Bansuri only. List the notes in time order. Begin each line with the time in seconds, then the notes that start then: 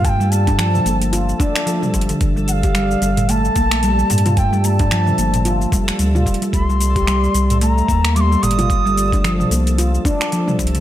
0.05 G5 A5
0.31 A5
2.48 F#5
2.52 F5
3.30 A5
4.38 G5
4.65 A5 A#5
6.54 C6
7.62 A#5
8.16 D6
8.20 C6
8.42 D#6